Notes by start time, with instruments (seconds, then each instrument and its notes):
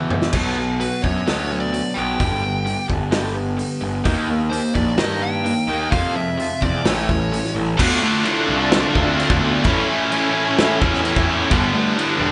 Already playing: overdriven electric guitar E2 B2 E3, distorted electric guitar E2 B2 E3, clean electric guitar E3 B3 E4
0.10 clean electric guitar G#3, mid tom
0.22 snare
0.33 picked electric bass B1, clean electric guitar B2, overdriven electric guitar B2 F#3 B3, kick, crash
0.56 overdriven electric guitar B2 F#3, clean electric guitar B3
0.80 overdriven electric guitar B2 F#3, clean electric guitar F#4, lead electric guitar B4, open hi-hat
1.02 picked electric bass F#2, overdriven electric guitar B2 F#3, clean electric guitar D4, lead electric guitar C#5, kick
1.26 picked electric bass D2, overdriven electric guitar B2 F#3 B3, clean electric guitar F#3, snare, open hi-hat
1.50 overdriven electric guitar B2 F#3, clean electric guitar B3
1.60 lead electric guitar D5
1.73 overdriven electric guitar B2 F#3, clean electric guitar F#3, open hi-hat
1.94 picked electric bass B1, overdriven electric guitar B2 F#3 B3, clean electric guitar B3, lead electric guitar G5
2.18 picked electric bass G1, overdriven electric guitar G2 D3 G3, clean electric guitar G2, kick, open hi-hat
2.42 overdriven electric guitar G2 D3, clean electric guitar B3
2.65 overdriven electric guitar G2 D3, clean electric guitar G4, open hi-hat
2.88 picked electric bass G1, overdriven electric guitar G2 D3, clean electric guitar D4, kick
3.11 overdriven electric guitar G2 D3 G3, clean electric guitar G3, snare, open hi-hat
3.35 overdriven electric guitar G2 D3, clean electric guitar B3
3.57 overdriven electric guitar G2 D3, clean electric guitar G3, open hi-hat
3.81 picked electric bass G1, overdriven electric guitar G2 D3, clean electric guitar B3
4.04 picked electric bass D#2, overdriven electric guitar D#3 A#3 D#4, clean electric guitar D#3, kick, open hi-hat
4.28 overdriven electric guitar D#3 A#3, clean electric guitar A#3
4.50 overdriven electric guitar D#3 A#3, clean electric guitar G4, lead electric guitar C5, open hi-hat
4.75 picked electric bass A#1, overdriven electric guitar D#3 A#3, clean electric guitar D#4, lead electric guitar D5, kick
4.98 picked electric bass G2, overdriven electric guitar D#3 A#3 D#4, clean electric guitar D#3, lead electric guitar D#5, snare, open hi-hat
5.22 overdriven electric guitar D#3 A#3, clean electric guitar A#3, lead electric guitar G5
5.45 clean electric guitar D#3, overdriven electric guitar D#3 A#3, open hi-hat
5.67 picked electric bass D#2, overdriven electric guitar D#3 A#3 D#4, clean electric guitar A#3
5.91 overdriven electric guitar F2 C3 F3, picked electric bass F2, clean electric guitar F2, lead electric guitar F5, kick, open hi-hat
6.15 overdriven electric guitar F2 C3, clean electric guitar G#3, lead electric guitar E5
6.38 overdriven electric guitar F2 C3, clean electric guitar F4, open hi-hat
6.61 picked electric bass E2, overdriven electric guitar F2 C3, clean electric guitar C4, lead electric guitar D5, kick
6.84 picked electric bass A1, overdriven electric guitar A2 E3 A3, clean electric guitar A2, lead electric guitar C#5, snare, open hi-hat
7.09 overdriven electric guitar A2 E3, clean electric guitar G3, kick
7.32 overdriven electric guitar A2 E3, clean electric guitar E3, open hi-hat
7.45 snare
7.55 picked electric bass A1, overdriven electric guitar A2 E3, clean electric guitar G3
7.78 picked electric bass D2, overdriven electric guitar D3 A3 D4 F4, lead electric guitar B3, string machine F4 A4 D5 A5, kick, crash
8.00 lead electric guitar A3, overdriven electric guitar A3 D4 F4
8.23 overdriven electric guitar D3 A3 D4 F4, lead electric guitar E4, crash
8.47 picked electric bass C2, lead electric guitar D4, overdriven electric guitar D4 F4
8.51 overdriven electric guitar A3
8.71 distorted electric guitar D3 A3 D4 F4, snare, crash
8.93 picked electric bass D2, distorted electric guitar D3, overdriven electric guitar A3 D4 F4, kick
9.06 lead electric guitar C4
9.16 overdriven electric guitar D3 A3 D4 F4, crash
9.30 picked electric bass D2, kick
9.40 distorted electric guitar A3 D4 F4, lead electric guitar B3
9.63 picked electric bass A1, overdriven electric guitar A2 E3 A3 C#4 E4, lead electric guitar C#4, string machine E4 A4 C#5 A5, kick, crash
9.87 overdriven electric guitar A3 C#4 E4
10.11 distorted electric guitar A2, overdriven electric guitar E3 A3 C#4 E4, crash
10.34 overdriven electric guitar A3 C#4 E4
10.58 picked electric bass A2, distorted electric guitar E3 A3 C#4 E4, snare, crash
10.80 picked electric bass E2, distorted electric guitar A2 E3, overdriven electric guitar A3 C#4 E4, kick
10.94 snare
11.03 overdriven electric guitar A2 E3 A3 C#4 E4, crash
11.16 picked electric bass E2, kick
11.27 distorted electric guitar A3 C#4 E4
11.49 picked electric bass G1, overdriven electric guitar G2 D3 G3 B3 D4, lead electric guitar B3, string machine D4 G4 B4 G5, kick, crash
11.72 overdriven electric guitar G3 B3 D4, lead electric guitar A3
11.95 distorted electric guitar G2, overdriven electric guitar D3 G3 B3 D4, lead electric guitar E4, crash
12.18 picked electric bass E1, overdriven electric guitar B3 D4, lead electric guitar D4
12.23 overdriven electric guitar G3